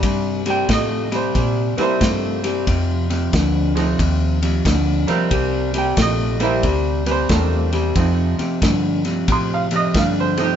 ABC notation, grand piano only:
X:1
M:4/4
L:1/8
Q:"Swing" 1/4=91
K:F
V:1 name="Grand piano"
z g _e c2 [=Bc]3- | [=Bc]3 z4 z | z g _e c2 [=Bc]3- | [=Bc]3 z (3c' f _e (3f c G |]
V:2 name="Grand piano"
z4 z [G,B,CE]3 | z3 [F,A,C_E] z3 [G,B,CG]- | [G,B,CG]2 z [G,B,CE] z2 [G,B,CD] z | [F,A,C_E] z6 [F,A,CE] |]